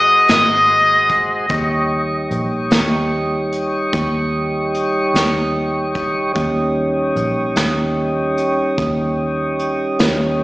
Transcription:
0.00 0.25 G#1 medium
0.00 1.46 G#3 medium
0.00 1.46 F#4 medium
0.00 1.46 C5 medium
0.00 0.31 D#5 medium
0.28 1.47 G#1 medium
0.28 2.69 D#5 medium
0.28 snare medium
0.28 closed hi-hat medium
1.10 kick medium
1.10 closed hi-hat medium
1.49 2.27 D#2 medium
1.49 6.33 G3 medium
1.49 6.32 D#4 medium
1.49 6.32 C#5 medium
1.49 kick medium
1.49 closed hi-hat medium
2.31 2.69 A#1 medium
2.31 closed hi-hat medium
2.71 3.89 D#2 medium
2.71 snare loud
2.71 closed hi-hat medium
3.52 closed hi-hat medium
3.93 5.11 D#2 medium
3.93 kick loud
3.93 closed hi-hat medium
4.75 closed hi-hat medium
5.14 6.32 D#2 medium
5.14 snare medium
5.14 closed hi-hat medium
5.95 kick medium
5.95 closed hi-hat soft
6.34 7.13 D#2 medium
6.34 10.44 G3 medium
6.34 10.44 C#4 medium
6.34 10.44 D#4 medium
6.34 kick medium
6.34 closed hi-hat medium
7.16 7.54 A#1 medium
7.16 closed hi-hat medium
7.56 8.74 D#2 medium
7.56 snare medium
7.56 closed hi-hat medium
8.37 closed hi-hat medium
8.78 9.96 D#2 medium
8.78 kick loud
8.78 closed hi-hat medium
9.59 closed hi-hat medium
9.99 10.44 D#2 medium
9.99 snare medium
9.99 closed hi-hat medium

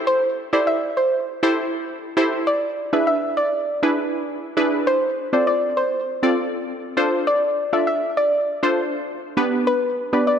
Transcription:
0.00 0.37 E4 medium
0.00 0.37 G4 medium
0.00 0.37 A4 medium
0.00 0.37 C5 loud
0.07 0.20 C5 loud
0.53 1.24 E4 medium
0.53 1.24 G4 medium
0.53 1.24 A4 medium
0.53 1.24 C5 medium
0.53 0.64 D5 medium
0.67 0.91 E5 medium
0.97 1.10 C5 medium
1.43 2.03 E4 medium
1.43 2.03 G4 medium
1.43 2.03 A4 medium
1.43 2.03 C5 loud
2.17 2.47 E4 loud
2.17 2.47 G4 medium
2.17 2.47 A4 medium
2.17 2.47 C5 loud
2.47 2.60 D5 medium
2.93 3.64 D4 medium
2.93 3.64 E4 medium
2.93 3.64 G#4 medium
2.93 3.64 B4 medium
2.93 3.04 E5 medium
3.07 3.31 E5 medium
3.37 3.50 D5 medium
3.83 4.43 D4 medium
3.83 4.43 E4 medium
3.83 4.43 G#4 medium
3.83 4.43 B4 loud
4.57 4.87 D4 medium
4.57 4.87 E4 medium
4.57 4.87 G#4 medium
4.57 4.87 B4 loud
4.87 5.00 C5 loud
5.33 6.04 C4 medium
5.33 6.04 F4 medium
5.33 6.04 A4 medium
5.33 6.04 C5 medium
5.33 5.44 D5 medium
5.47 5.71 D5 medium
5.77 5.90 C5 medium
6.23 6.83 C4 medium
6.23 6.83 F4 medium
6.23 6.83 A4 medium
6.23 6.83 D5 loud
6.97 7.57 D4 medium
6.97 7.57 F4 medium
6.97 7.57 A4 medium
6.97 7.57 C5 loud
7.27 7.40 D5 medium
7.73 8.44 D4 medium
7.73 8.44 F4 medium
7.73 8.44 A4 medium
7.73 8.44 D5 medium
7.73 7.84 E5 medium
7.87 8.11 E5 medium
8.17 8.30 D5 medium
8.63 9.23 D4 medium
8.63 9.23 F4 medium
8.63 9.23 A4 medium
8.63 9.23 C5 loud
9.37 9.97 B3 loud
9.37 9.97 D4 medium
9.37 9.97 G4 medium
9.37 9.97 B4 loud
9.67 9.80 B4 loud
10.13 10.39 B3 medium
10.13 10.39 D4 medium
10.13 10.39 G4 medium
10.13 10.39 B4 medium
10.13 10.24 D5 medium
10.27 10.39 D5 medium

